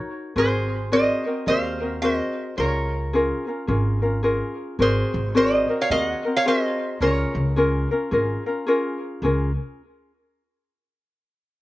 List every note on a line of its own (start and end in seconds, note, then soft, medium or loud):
0.00 0.36 D#4 medium
0.00 0.36 F#4 medium
0.00 0.35 A#4 medium
0.00 0.36 C#5 medium
0.36 1.08 G#1 medium
0.36 0.91 C4 medium
0.36 0.91 F#4 medium
0.36 0.91 G#4 medium
0.36 0.89 G#4 medium
0.36 0.92 A#4 medium
0.36 0.94 C5 medium
0.92 1.26 C4 medium
0.92 1.26 F#4 medium
0.92 1.26 G#4 medium
0.92 1.25 A#4 medium
0.92 1.45 C5 medium
0.92 1.47 D#5 loud
1.26 1.46 C4 soft
1.26 1.47 F#4 soft
1.26 1.47 A#4 medium
1.46 2.19 D#2 loud
1.46 1.81 C4 medium
1.46 1.80 F#4 medium
1.46 1.81 G#4 medium
1.46 1.79 A#4 medium
1.46 2.00 C5 medium
1.46 1.99 F5 loud
1.80 2.02 C4 soft
1.80 2.02 F#4 soft
1.80 2.02 A#4 medium
2.02 2.58 C4 medium
2.02 2.58 F#4 medium
2.02 2.56 G#4 medium
2.02 2.58 A#4 medium
2.02 2.55 C5 medium
2.02 2.57 D#5 medium
2.57 3.30 C#2 medium
2.57 3.13 C#4 medium
2.57 3.13 F4 medium
2.57 3.13 G#4 medium
2.57 3.15 A#4 medium
2.57 4.21 A#4 medium
2.57 4.20 C#5 medium
3.13 3.48 C#4 medium
3.13 3.47 F4 medium
3.13 3.48 G#4 medium
3.13 3.46 A#4 medium
3.47 3.67 C#4 soft
3.47 3.67 F4 soft
3.47 3.68 A#4 medium
3.67 4.40 G#1 loud
3.67 4.03 C#4 medium
3.67 4.02 F4 medium
3.67 4.02 G#4 medium
3.67 4.01 A#4 medium
4.02 4.23 C#4 soft
4.02 4.23 F4 medium
4.02 4.23 A#4 medium
4.23 4.79 C#4 medium
4.23 4.79 F4 medium
4.23 4.78 G#4 medium
4.23 4.80 A#4 medium
4.79 5.01 G#1 medium
4.79 5.33 C4 medium
4.79 5.34 F#4 medium
4.79 5.34 G#4 medium
4.79 5.32 G#4 medium
4.79 5.36 A#4 medium
4.79 5.36 C5 medium
5.14 5.64 G#1 medium
5.35 5.69 C4 medium
5.35 5.69 F#4 medium
5.35 5.69 G#4 medium
5.35 5.68 A#4 loud
5.35 5.78 C5 medium
5.35 5.81 D#5 medium
5.69 5.89 C4 soft
5.69 5.91 F#4 soft
5.69 5.90 A#4 medium
5.81 5.90 C#5 medium
5.81 5.91 F5 loud
5.90 6.12 D#2 loud
5.90 6.25 C4 medium
5.90 6.25 F#4 medium
5.90 6.24 G#4 medium
5.90 6.23 A#4 medium
5.90 6.32 D#5 medium
5.90 6.03 F5 loud
6.03 6.36 F#5 loud
6.25 6.45 C4 soft
6.25 6.46 F#4 soft
6.25 6.46 A#4 medium
6.37 6.46 C#5 medium
6.37 6.47 F5 loud
6.46 7.01 C4 medium
6.46 7.01 F#4 medium
6.46 7.01 G#4 medium
6.46 7.02 A#4 medium
6.46 6.98 C5 medium
6.46 7.02 D#5 loud
7.01 7.23 C#2 medium
7.01 7.57 C#4 medium
7.01 7.57 F4 medium
7.01 7.56 G#4 medium
7.01 8.64 A#4 medium
7.01 7.58 A#4 medium
7.01 8.64 C#5 medium
7.35 7.85 C#2 loud
7.56 7.91 C#4 medium
7.56 7.91 F4 medium
7.56 7.91 G#4 medium
7.56 7.90 A#4 loud
7.91 8.11 C#4 medium
7.91 8.12 F4 medium
7.91 8.12 A#4 medium
8.11 8.34 G#1 medium
8.11 8.46 C#4 medium
8.11 8.45 F4 medium
8.11 8.46 G#4 medium
8.11 8.45 A#4 medium
8.46 8.66 C#4 medium
8.46 8.67 F4 medium
8.46 8.67 A#4 medium
8.67 9.23 C#4 medium
8.67 9.24 F4 medium
8.67 9.22 G#4 medium
8.67 9.24 A#4 medium
9.22 9.54 C#2 medium
9.22 9.51 C#4 medium
9.22 9.51 F4 medium
9.22 9.50 G#4 medium
9.22 9.51 A#4 medium